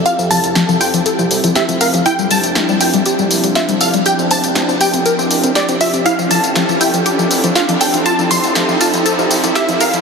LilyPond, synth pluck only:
\new Staff \with { instrumentName = "Synth pluck" } { \time 4/4 \key f \major \tempo 4 = 120 f''8 a''4 g''8 r4 e''8 f''8 | g''8 a''4 g''8 r4 e''8 f''8 | g''8 a''4 g''8 r4 d''8 e''8 | f''8 a''4 g''8 r4 f''8 g''8 |
a''8 c'''4 a''8 r4 e''8 f''8 | }